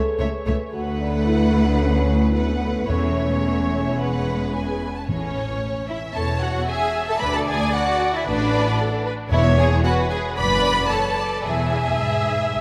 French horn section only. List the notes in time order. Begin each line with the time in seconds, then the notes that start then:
Already playing: A4
0.73 F#4
1.01 D4
1.26 E4
1.68 D4
1.82 C#4
2.35 B3
2.89 C#4